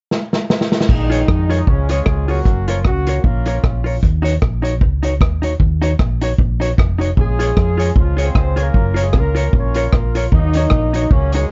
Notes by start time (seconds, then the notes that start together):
0.11 snare
0.33 snare
0.50 snare
0.61 snare
0.72 snare
0.81 snare
0.89 A#1 D#3 G#3 D#4, kick, crash
1.10 F4 G#4 C#5, closed hi-hat
1.28 F2, kick, cross-stick
1.50 F4 G#4 C#5, closed hi-hat
1.66 C#2 C#3 F3 G#3 C#4, kick
1.88 G#3 C#4 F4 G#4 C#5, closed hi-hat
2.06 C#2, kick, cross-stick
2.27 F#3 A#3 C#4 F4 F#4 G#4 C#5, open hi-hat
2.45 F#1, kick, hi-hat pedal
2.66 F3 F4 A#4 C#5, closed hi-hat
2.84 C#2 F#3 A#3 C#4 F#4, kick, cross-stick
3.07 F4 A#4 C#5, closed hi-hat
3.24 A#1 A#3 C#4 F4 A#4, kick
3.46 F4 A#4 C#5, closed hi-hat
3.64 A#1, kick, cross-stick
3.84 F4 A#4 C#5, open hi-hat
4.03 D#2, kick, hi-hat pedal
4.22 D#4 F#4 C#5, closed hi-hat
4.42 A#1, kick, cross-stick
4.62 D#4 F#4 C#5, closed hi-hat
4.81 C#2, kick
5.03 D#4 F#4 C#5, closed hi-hat
5.21 D#2, kick, cross-stick
5.42 D#4 F#4 C#5, closed hi-hat
5.60 D#2, kick
5.82 D#4 F#4 C#5, closed hi-hat
5.99 A#1, kick, cross-stick
6.21 D#4 F#4 C#5, closed hi-hat
6.38 A#1, kick
6.60 D#4 F#4 C#5, closed hi-hat
6.77 F1, muted hollow-body jazz guitar stroke, kick, cross-stick
6.98 D#4 F#4 C#5, closed hi-hat
7.17 A#1 G#3 C#4 F4 G#4, kick
7.39 F4 G#4 C#5, closed hi-hat
7.57 F2, kick, cross-stick
7.78 F4 G#4 C#5, closed hi-hat
7.95 C#2 F3 G#3 C#4 F4, kick
8.17 F4 G#4 C#5, closed hi-hat
8.23 C4 C5
8.35 C#2, kick, cross-stick
8.56 C#4 F4 G#4 C#5, closed hi-hat
8.61 A#3 A#4
8.74 F#1, kick
8.94 F4 A#4 C#5, closed hi-hat
9.01 G#3 G#4
9.13 C#2 C#4 F4, kick, cross-stick
9.18 A#3 A#4
9.35 F4 A#4 C#5, closed hi-hat
9.53 A#1 F4 A#4, kick
9.57 C#4 C#5
9.74 F4 A#4 C#5, closed hi-hat
9.93 A#1, kick, cross-stick
10.15 F4 A#4 C#5, closed hi-hat
10.32 D#2 D#3 F#3 A#3 D#4, kick
10.53 D#4 F#4 C#5, closed hi-hat
10.70 A#1, kick, cross-stick
10.94 D#4 F#4 C#5, closed hi-hat
11.11 C#2 C#3 F#3 A#3 C#4, kick
11.32 G#3 D#4 F#4 G#4 C#5, closed hi-hat